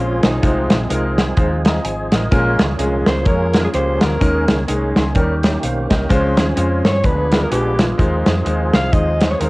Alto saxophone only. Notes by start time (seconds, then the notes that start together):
Already playing: F4
0.23 D#4
3.08 C5
3.27 A#4
3.65 G#4
3.75 C5
4.02 A#4
6.86 C#5
7.06 B4
7.43 A#4
7.52 G4
7.80 F4
8.74 F5
8.93 D#5
9.31 C#5
9.40 A#4